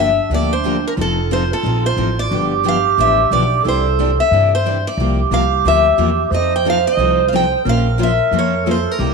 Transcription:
Already playing: upright bass G1, clarinet D4
0.00 steel-string acoustic guitar E5
0.30 upright bass D2, steel-string acoustic guitar D3 F3 A#3 D4 G4
0.34 steel-string acoustic guitar D5
0.53 steel-string acoustic guitar C5
0.65 steel-string acoustic guitar D3 F3 A#3 D4 G4
0.88 steel-string acoustic guitar A#4
0.96 upright bass F1, steel-string acoustic guitar F3 C4 D#4 A4, clarinet F4
1.01 steel-string acoustic guitar A4
1.31 steel-string acoustic guitar F3 C4 D#4 A4 C5
1.53 steel-string acoustic guitar A4
1.63 upright bass A#1, steel-string acoustic guitar F3 C4 D#4 A4
1.86 steel-string acoustic guitar C5
1.97 upright bass A1, steel-string acoustic guitar F3 C4 D#4 A4
2.19 steel-string acoustic guitar D5
2.29 upright bass G1, steel-string acoustic guitar D3 F3 B3 D4 G4, clarinet G4
2.65 steel-string acoustic guitar D3 F3 B3 D4 G4 F5
2.98 upright bass A1, steel-string acoustic guitar D3 F3 B3 D4 G4 E5
3.31 upright bass B1, steel-string acoustic guitar D3 F3 B3 D4 G4 D5
3.64 upright bass C2, steel-string acoustic guitar C3 E3 C4 D4 E4 G4 D5, clarinet A4
3.68 steel-string acoustic guitar C5
3.99 steel-string acoustic guitar C3 E3 C4 D4 E4 G4 D5
4.20 steel-string acoustic guitar E5
4.31 upright bass G2, steel-string acoustic guitar C3 E3 C4 D4 E4 G4 D5
4.55 steel-string acoustic guitar C5
4.64 steel-string acoustic guitar C3 E3 C4 D4 E4 G4 D5
4.87 steel-string acoustic guitar D5
4.97 upright bass C2, steel-string acoustic guitar C3 F3 A#3 F4 G4, clarinet G4
5.31 upright bass C2, steel-string acoustic guitar C3 F3 A#3 F4 G4 F5
5.65 upright bass D2, steel-string acoustic guitar C3 F3 A#3 F4 G4 E5
5.98 upright bass E2, steel-string acoustic guitar C3 F3 A#3 F4 G4
6.31 upright bass F2, steel-string acoustic guitar F3 C4 D#4 A4 D#5, clarinet C5
6.56 steel-string acoustic guitar G5
6.65 steel-string acoustic guitar F3 C4 D#4 A4
6.70 steel-string acoustic guitar F5
6.87 steel-string acoustic guitar D#5
6.97 upright bass C2, steel-string acoustic guitar F3 C4 D#4 A4
7.28 steel-string acoustic guitar F5
7.33 steel-string acoustic guitar F3 C4 D#4 A4 G5
7.65 upright bass A#1, steel-string acoustic guitar F3 A#3 C#4 F4 C5, clarinet A#4
7.69 steel-string acoustic guitar F5
7.98 steel-string acoustic guitar F3 A#3 C#4 F4 C5
8.03 steel-string acoustic guitar E5
8.31 upright bass F2, steel-string acoustic guitar F3 A#3 C#4 F4 C5
8.39 steel-string acoustic guitar C#5
8.65 steel-string acoustic guitar F3 A#3 C#4 F4 C5, clarinet A4
8.71 steel-string acoustic guitar C5
8.91 steel-string acoustic guitar A#4
8.99 upright bass C2, steel-string acoustic guitar C3 G3 A#3 E4 G4, clarinet G4

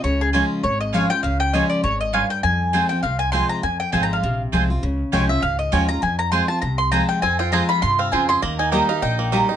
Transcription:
0.04 upright bass C#2, steel-string acoustic guitar C#3, mandolin C#5
0.21 mandolin G#4
0.33 steel-string acoustic guitar F3 G#3 C#4 F4, mandolin C#4 F4 C#5 G#5
0.63 upright bass G#1, steel-string acoustic guitar G#2, mandolin C#5
0.80 mandolin D#5
0.93 steel-string acoustic guitar F3 G#3 C#4 F4, mandolin C#4 F4 C#5 F5 G#5
1.10 steel-string acoustic guitar C#4 F4, mandolin G5
1.23 upright bass C#2, steel-string acoustic guitar C#3, mandolin F5
1.40 mandolin G5
1.53 steel-string acoustic guitar F3 G#3 C#4 F4, mandolin C#4 F4 C#5 D#5 G#5
1.70 mandolin D5
1.84 upright bass G#1, steel-string acoustic guitar G#2, mandolin C#5
2.01 mandolin D#5
2.13 steel-string acoustic guitar G2, mandolin C#4 F4 C#5 F5 G#5
2.30 mandolin G5
2.43 steel-string acoustic guitar F2, upright bass F2, mandolin G#5
2.73 steel-string acoustic guitar F3 G#3 C4 F4, mandolin C4 F4 C5 G#5
2.89 steel-string acoustic guitar C4 F4, mandolin G5
3.03 upright bass C2, steel-string acoustic guitar C3, mandolin F5
3.19 mandolin G#5
3.32 steel-string acoustic guitar F3 G#3 C4 F4, mandolin C4 F4 C5 G#5 C6
3.49 mandolin A#5
3.63 upright bass F2, steel-string acoustic guitar F2, mandolin G#5
3.80 mandolin G5
3.92 upright bass G#1, steel-string acoustic guitar F3 G#3 C4 F4, mandolin C4 F4 C5 G#5
4.03 mandolin A#5
4.13 mandolin F5
4.23 upright bass A#1, steel-string acoustic guitar C3
4.52 upright bass C2, steel-string acoustic guitar F3 G#3 C4 F4, mandolin C4 F4 C5 G#5
4.70 steel-string acoustic guitar C4 F4
4.83 upright bass C#2, steel-string acoustic guitar C#3
5.12 upright bass C2, steel-string acoustic guitar F3 G#3 C#4 F4, mandolin C#4 F4 C#5 G5 G#5
5.29 steel-string acoustic guitar C#4 F4, mandolin E5
5.42 upright bass C#2, steel-string acoustic guitar G#2, mandolin F5
5.59 mandolin D#5
5.72 upright bass D#2, steel-string acoustic guitar F3 G#3 C#4 F4, mandolin C#4 F4 C#5 G5 G#5
5.89 steel-string acoustic guitar C#4 F4, mandolin A#5
6.02 steel-string acoustic guitar F2, upright bass F2, mandolin G#5
6.19 mandolin A#5
6.32 steel-string acoustic guitar F3 G#3 C4 F4, mandolin C4 F4 C5 G#5 C6
6.48 steel-string acoustic guitar C4 F4, mandolin A5
6.62 upright bass C2, steel-string acoustic guitar C3, mandolin A#5
6.78 mandolin C6
6.92 steel-string acoustic guitar F3 G#3 C4 F4, mandolin C4 F4 C5 G#5 A#5
7.09 mandolin G5
7.22 steel-string acoustic guitar F2, upright bass F2, five-string banjo C4, mandolin G#5
7.39 five-string banjo F4, mandolin G5
7.52 steel-string acoustic guitar F3 G#3 C4 F4, mandolin C4 F4 C5 G#5 A#5, five-string banjo G#4
7.69 five-string banjo F4, mandolin B5
7.82 upright bass G2, steel-string acoustic guitar C3, mandolin C6
7.99 five-string banjo C4, mandolin F5
8.12 upright bass F2, steel-string acoustic guitar C#3, mandolin C4 F4 C5 G#5, five-string banjo F4
8.29 five-string banjo G#4, mandolin C6
8.42 upright bass D#2, steel-string acoustic guitar D#3, five-string banjo A#3, mandolin A#5
8.59 five-string banjo D#4, mandolin G#5
8.72 steel-string acoustic guitar G3 A#3 D#4 G4, mandolin A#3 G4 D#5 G5 A#5, five-string banjo D#4
8.89 five-string banjo D#4, steel-string acoustic guitar D#4 G4, mandolin F5
9.02 upright bass A#1, steel-string acoustic guitar A#2, five-string banjo D#4, mandolin G5
9.19 five-string banjo A#3
9.32 five-string banjo D#3, steel-string acoustic guitar G3 A#3 D#4 G4, mandolin A#3 G4 D#5 A#5
9.49 five-string banjo D#4, steel-string acoustic guitar D#4 G4

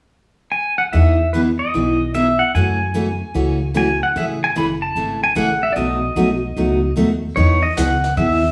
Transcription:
0.52 pedal steel guitar G#5
0.78 pedal steel guitar F#5
0.93 upright bass E2, steel-string acoustic guitar E3 B3 D#4 G#4, pedal steel guitar E5
1.33 steel-string acoustic guitar E3 B3 D#4 G#4, pedal steel guitar B4
1.59 pedal steel guitar D#5
1.74 upright bass B1, steel-string acoustic guitar E3 B3 D#4 G#4
2.14 steel-string acoustic guitar E3 B3 D#4 G#4, pedal steel guitar E5
2.39 pedal steel guitar F#5
2.55 upright bass F#2, steel-string acoustic guitar C#3 E3 A3 C#4 F#4, pedal steel guitar G#5
2.94 steel-string acoustic guitar C#3 E3 A3 C#4 F#4
3.34 upright bass C#2, steel-string acoustic guitar C#3 E3 A3 C#4 F#4
3.74 steel-string acoustic guitar C#3 E3 A3 C#4 F#4, pedal steel guitar G#5
4.03 pedal steel guitar F#5
4.16 upright bass A1, steel-string acoustic guitar C#3 E3 A3 C#4 G#4, pedal steel guitar E5
4.44 pedal steel guitar G#5
4.56 upright bass F#1, steel-string acoustic guitar C#3 E3 A3 C#4 G#4, pedal steel guitar B5
4.82 pedal steel guitar A5
4.96 upright bass G#1, steel-string acoustic guitar C#3 E3 A3 C#4 G#4
5.24 pedal steel guitar G#5
5.35 upright bass A1, steel-string acoustic guitar C#3 E3 A3 C#4 G#4, pedal steel guitar F#5
5.63 pedal steel guitar E5
5.73 upright bass B1, steel-string acoustic guitar B2 F#3, pedal steel guitar D5
5.77 steel-string acoustic guitar A3 D#4 F#4, pedal steel guitar D#5
6.16 upright bass B1, steel-string acoustic guitar B2 F#3 A3 D#4 F#4
6.57 upright bass C#2, steel-string acoustic guitar B2 F#3 A3 D#4 F#4
6.96 upright bass D#2, steel-string acoustic guitar B2 F#3 A3 D#4 F#4
7.36 upright bass E2, steel-string acoustic guitar E3 B3 D#4 G#4, pedal steel guitar C#5, brush sweep, kick
7.63 pedal steel guitar D#5
7.77 upright bass C#2, steel-string acoustic guitar E3 B3 D#4 G#4, pedal steel guitar F#5, snare, hi-hat pedal
8.04 snare
8.17 upright bass D#2, steel-string acoustic guitar E3 B3 D#4 G#4, pedal steel guitar E5, brush sweep, kick

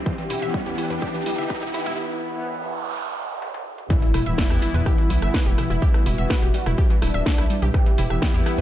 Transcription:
Already playing: analog synth pad G3 E4 B4, riser
0.06 synth arpeggio sound E3, analog polysynth G4, analog synth pad F#5, kick, closed hi-hat
0.18 synth arpeggio sound E3, closed hi-hat
0.30 analog synth bass E1, synth arpeggio sound E4, mid tom, open hi-hat
0.42 analog synth bass E1, analog synth pad E3 B3 E4, synth arpeggio sound E5, closed hi-hat
0.54 synth arpeggio sound G3, kick, closed hi-hat
0.66 analog synth bass E2, synth arpeggio sound G4, closed hi-hat
0.78 synth arpeggio sound E4, analog polysynth G4, open hi-hat
0.90 analog synth bass E2, synth arpeggio sound B4, closed hi-hat, mid tom
1.02 synth arpeggio sound G4, kick, closed hi-hat
1.14 synth arpeggio sound E3, closed hi-hat
1.26 analog synth bass B1, synth arpeggio sound E4, open hi-hat
1.38 analog synth bass G1, synth arpeggio sound E5, closed hi-hat
1.50 synth arpeggio sound B4, kick, closed hi-hat
1.62 analog synth bass E1, synth arpeggio sound G4, closed hi-hat
1.74 synth arpeggio sound E4, mid tom, open hi-hat
1.86 analog synth bass E1, synth arpeggio sound E4, closed hi-hat
1.98 noise sweep
2.34 analog synth pad E3 B3 E4
3.42 high tom
3.54 high tom
3.78 mid tom
3.90 synth arpeggio sound E3, analog synth pad G3 E4 B4 E5, analog polysynth E4, kick, closed hi-hat, impact
4.02 synth arpeggio sound E3, closed hi-hat
4.14 analog synth bass E1, synth arpeggio sound E4, cross-stick, mid tom, open hi-hat
4.26 analog synth bass E1, analog synth pad E3 B3 E4, synth arpeggio sound E5, closed hi-hat
4.38 synth arpeggio sound G3, kick, snare, closed hi-hat
4.50 analog synth bass E2, synth arpeggio sound G4, cross-stick, closed hi-hat
4.62 synth arpeggio sound E4, analog polysynth E4, open hi-hat
4.74 analog synth bass E2, synth arpeggio sound B4, closed hi-hat, mid tom
4.86 synth arpeggio sound G4, kick, cross-stick, closed hi-hat
4.98 synth arpeggio sound E3, closed hi-hat
5.10 analog synth bass B1, synth arpeggio sound E4, open hi-hat
5.22 analog synth bass G1, synth arpeggio sound E5, cross-stick, closed hi-hat
5.34 synth arpeggio sound B4, kick, snare, closed hi-hat
5.46 analog synth bass E1, synth arpeggio sound G4, closed hi-hat
5.58 synth arpeggio sound E4, cross-stick, mid tom, open hi-hat
5.70 analog synth bass E1, synth arpeggio sound E4, closed hi-hat
5.82 synth arpeggio sound G4, kick, closed hi-hat
5.94 synth arpeggio sound E3, cross-stick, closed hi-hat
6.06 analog synth bass E1, synth arpeggio sound E4, analog polysynth F#4, mid tom, open hi-hat
6.18 analog synth bass E1, analog synth pad E3 B3 E4, synth arpeggio sound E5, closed hi-hat
6.30 synth arpeggio sound B4, kick, cross-stick, snare, closed hi-hat
6.42 analog synth bass E1, synth arpeggio sound G4, closed hi-hat
6.54 synth arpeggio sound G3, open hi-hat
6.66 analog synth bass E1, synth arpeggio sound E4, cross-stick, closed hi-hat, mid tom
6.78 synth arpeggio sound G4, kick, closed hi-hat
6.90 synth arpeggio sound E3, closed hi-hat
7.02 analog synth bass D1, analog polysynth D4, synth arpeggio sound E4, cross-stick, open hi-hat
7.14 analog synth bass D1, synth arpeggio sound E5, closed hi-hat
7.26 synth arpeggio sound G3, kick, snare, closed hi-hat
7.38 analog synth bass B1, synth arpeggio sound E4, cross-stick, closed hi-hat
7.50 synth arpeggio sound G3, open hi-hat
7.62 analog synth bass B1, synth arpeggio sound G4, closed hi-hat, mid tom
7.74 synth arpeggio sound E3, analog polysynth G4, kick, cross-stick, closed hi-hat
7.86 synth arpeggio sound E3, closed hi-hat
7.98 analog synth bass E1, synth arpeggio sound E4, mid tom, open hi-hat
8.10 analog synth bass E1, analog synth pad E3 B3 E4, synth arpeggio sound E5, cross-stick, closed hi-hat
8.22 synth arpeggio sound G3, kick, snare, closed hi-hat
8.34 analog synth bass E2, synth arpeggio sound G4, closed hi-hat
8.46 synth arpeggio sound E4, analog polysynth G4, cross-stick, open hi-hat
8.58 analog synth bass E2, synth arpeggio sound B4, closed hi-hat, mid tom

